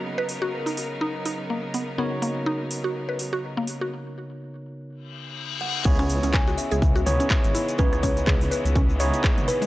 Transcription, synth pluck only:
X:1
M:4/4
L:1/16
Q:"Swing 16ths" 1/4=124
K:C#dor
V:1 name="Synth pluck"
z B z F z D z2 D z D z A, z B, z | B, z A, z D z2 F z B z F z A, z F | z16 | z C z C z F z G z F z C z2 E z |
C z C z G z B z C z c z G z2 G, |]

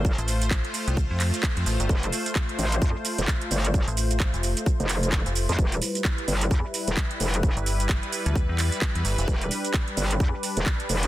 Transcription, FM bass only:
X:1
M:4/4
L:1/16
Q:"Swing 16ths" 1/4=130
K:Ephr
V:1 name="FM bass" clef=bass
z A,,,4 z2 C,,2 F,,2 z2 F,, A,,, G,,, | z16 | z A,,,4 F,,,2 z6 F,,,2 z | z16 |
z G,,,4 z2 D,,2 E,,2 z2 E,, G,,, F,,, | z16 |]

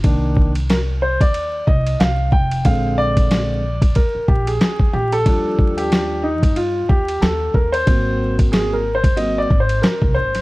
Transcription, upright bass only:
X:1
M:4/4
L:1/16
Q:"Swing 16ths" 1/4=92
K:Bb
V:1 name="Upright bass" clef=bass
C,,6- C,, E,,3 C,,2 C,,2 F,,,2 | B,,,8 z2 B,,,2 z2 B,,,2 | E,,6- E,, G,,3 E,,2 E,,2 E,,2 | _A,,,8- A,,,2 A,,,2 z C,, A,,,2 |]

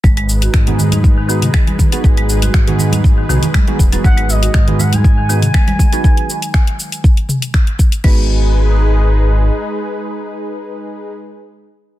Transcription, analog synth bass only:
X:1
M:4/4
L:1/8
Q:"Swing 16ths" 1/4=120
K:G#m
V:1 name="Analog synth bass" clef=bass
G,,,2 G,,4 z2 | G,,,2 G,,3 B,,, z D,,, | G,,,2 G,,4 z2 | z8 |
G,,,6 z2 | z8 |]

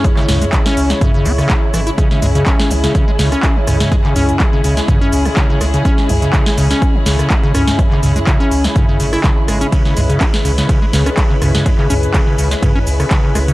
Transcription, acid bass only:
X:1
M:4/4
L:1/16
Q:"Swing 16ths" 1/4=124
K:C#m
V:1 name="Acid bass" clef=bass
C, C, C, G, C, C2 C, C, C, C C, B,, z E, E | C, C, G, C, C2 C, C, C, G, C, C2 C, C, C, | G, C, C2 C, C, C, G, C, C2 C, C, C, G, C, | C2 C, C, z G, C, C2 C, C, C, G, C, C2 |
C, C, C, G, C, C2 C, C, C, C, E C, z G, C | C, C, G, C, C z C, C, C, G, C, C z C, C, C, | G, C, C z C, C, C, G, C, C z C, C, C, G, C, |]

